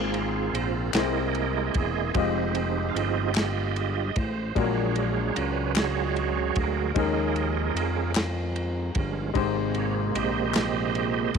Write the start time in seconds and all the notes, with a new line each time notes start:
Already playing: G#1 G#2 A#3 C4 F4 G#4 C5
0.14 ride bell
0.53 A#1 C5, ride bell
0.94 C2 C3 G#3 A#3 E4 G#4 A#4 C5 D#5, snare, clap, ride bell
1.35 ride bell
1.73 E1 G#4, kick, ride bell
2.14 F1 F3 G#3 C4 D#4 F4 G4, kick, ride bell
2.18 D#5
2.55 ride bell
2.89 F5
2.95 G1 F4 G4 D#5, ride bell
3.35 snare, clap, ride bell
3.76 ride bell
4.16 A1 C5, kick, ride bell
4.55 A#1 A#2 F#3 G#3 C#4 D4 F#4 G#4 A#4 C#5, kick, ride bell
4.63 D4
4.96 ride bell
5.36 C#2 B4, ride bell
5.76 F#4 G#4 C#5, snare, clap, ride bell
6.16 ride bell
6.56 D2 A#4, kick, ride bell
6.94 D#2 D#3 F3 G#3 C#4 D#4 G#4 A#4, kick, ride bell
6.99 D#5
7.36 ride bell
7.75 F2, ride bell
8.15 snare, clap, ride bell
8.56 ride bell
8.95 G1 F3 G#3 C#4, kick, ride bell
9.34 G#1 G#2 C3 G#3 A#3 D#4 G4 C5, kick, ride bell
9.74 C#5, ride bell
10.15 A#1 G4 C5 D#5, ride bell
10.54 snare, clap, ride bell
10.95 ride bell
11.34 ride bell